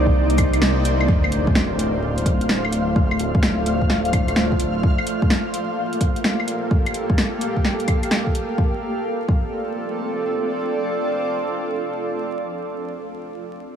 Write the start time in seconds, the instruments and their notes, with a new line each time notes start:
Already playing: detuned saw bass C2, ambient pad A#3 D#4 C5 D5
0.06 kick
0.30 closed hi-hat
0.38 kick, closed hi-hat, cabasa, claves
0.53 closed hi-hat, claves
0.62 snare
0.85 closed hi-hat, cabasa
1.01 claves
1.08 detuned saw bass D1, ambient pad A3, synth texture F5, kick, impact
1.24 claves
1.32 closed hi-hat
1.47 kick
1.55 snare
1.65 ambient pad F4
1.79 closed hi-hat
2.18 closed hi-hat
2.26 kick, closed hi-hat
2.41 closed hi-hat
2.49 snare
2.65 claves
2.73 closed hi-hat
2.96 kick
3.11 claves
3.19 closed hi-hat
3.35 kick
3.43 snare
3.66 closed hi-hat
3.82 kick
3.90 snare
4.05 closed hi-hat
4.13 kick, closed hi-hat, claves
4.28 closed hi-hat, claves
4.36 snare
4.52 kick
4.60 closed hi-hat
4.83 ambient pad A#3, kick
4.98 claves
5.07 ambient pad G4, closed hi-hat
5.22 kick
5.30 snare
5.50 ambient pad A4
5.54 closed hi-hat
5.93 closed hi-hat
5.99 ambient pad F5, kick, closed hi-hat
6.16 closed hi-hat
6.24 snare
6.40 claves
6.48 closed hi-hat
6.71 kick
6.86 closed hi-hat, claves
6.94 closed hi-hat
7.10 kick
7.18 snare
7.41 closed hi-hat
7.57 kick
7.65 snare
7.80 closed hi-hat
7.88 kick, closed hi-hat, claves
8.03 closed hi-hat, claves
8.11 snare
8.27 kick
8.35 closed hi-hat
8.58 ambient pad C4, kick
8.68 ambient pad F4
8.75 ambient pad A4
8.81 ambient pad D5
9.28 kick